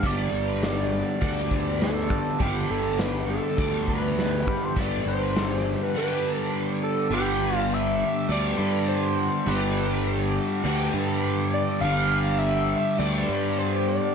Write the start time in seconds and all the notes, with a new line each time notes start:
Already playing: G3 D4 G4
0.02 G1 G2 D3 G3 B3 D4, kick, open hi-hat
0.06 D5
0.33 G1
0.62 D5, snare, open hi-hat
1.21 D2 G2 D3 G3 B3 D4, kick, open hi-hat
1.51 kick
1.81 A4, snare, open hi-hat
2.10 G2, kick
2.39 G1 G2 D3 G3 B3 G4, kick, open hi-hat
2.43 D4
2.70 G1 A4
2.98 B4, snare, open hi-hat
3.30 A4
3.57 D2 G2 D3 G3 B3 D4, kick, open hi-hat
3.88 B4, kick
4.18 B4, snare, open hi-hat
4.47 G2, kick
4.65 C5
4.76 G1 G2 D3 G3 B3 D4 D5, kick, open hi-hat
5.06 G1 C5
5.36 snare, open hi-hat
5.83 B4
5.94 G2 D3 G3 B3 B4
5.98 D4
6.38 A4
6.83 A4
7.11 G1 G2 D3 G3 B3 D4 G4
7.15 G4
7.56 F4
7.73 E5
8.29 D2 G2 D3 G3 B3 D4 G4 D5
8.59 G2
8.88 C5
9.47 G1 G2 D3 G3 B3 D4 G4 B4
10.64 D2 G2 D3 G3 B3 D4 G4
10.94 G2
11.54 D5
11.81 G1 G2 D3 G3 B3 D4 G4 F5
12.38 E5
12.99 D2 G2 D3 G3 B3 D4 G4 D5
13.29 G2
13.58 C5
13.89 D5